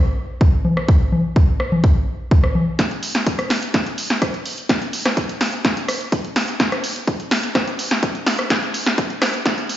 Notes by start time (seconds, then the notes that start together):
0.41 kick
0.65 low conga
0.77 cross-stick
0.89 kick
1.12 low conga
1.36 kick
1.60 cross-stick
1.72 low conga
1.84 kick
2.31 kick
2.44 cross-stick
2.55 low conga
2.79 kick, snare, closed hi-hat
2.91 closed hi-hat
3.03 open hi-hat
3.15 snare, closed hi-hat
3.26 kick, closed hi-hat
3.39 cross-stick, closed hi-hat
3.50 snare, open hi-hat
3.63 closed hi-hat
3.74 kick, snare, closed hi-hat
3.86 closed hi-hat
3.98 open hi-hat
4.10 snare, closed hi-hat
4.22 kick, cross-stick, closed hi-hat
4.34 closed hi-hat
4.46 open hi-hat
4.58 closed hi-hat
4.69 kick, snare, closed hi-hat
4.82 closed hi-hat
4.93 open hi-hat
5.06 cross-stick, snare, closed hi-hat
5.17 kick, closed hi-hat
5.29 closed hi-hat
5.41 snare, open hi-hat
5.53 closed hi-hat
5.65 kick, snare, closed hi-hat
5.77 closed hi-hat
5.88 cross-stick, open hi-hat
6.01 closed hi-hat
6.12 kick, closed hi-hat
6.25 closed hi-hat
6.36 snare, open hi-hat
6.48 closed hi-hat
6.60 kick, snare, closed hi-hat
6.72 cross-stick, closed hi-hat
6.84 open hi-hat
6.96 closed hi-hat
7.07 kick, closed hi-hat
7.20 closed hi-hat
7.31 snare, open hi-hat
7.44 closed hi-hat
7.55 kick, cross-stick, snare, closed hi-hat
7.67 closed hi-hat
7.79 open hi-hat
7.91 snare, closed hi-hat
8.03 kick, closed hi-hat
8.15 closed hi-hat
8.27 snare, open hi-hat
8.39 cross-stick, closed hi-hat
8.50 kick, snare, closed hi-hat
8.63 closed hi-hat
8.74 open hi-hat
8.86 snare
8.98 kick, closed hi-hat
9.10 closed hi-hat
9.22 cross-stick, snare, open hi-hat
9.34 closed hi-hat
9.46 kick, snare, closed hi-hat
9.58 closed hi-hat
9.69 open hi-hat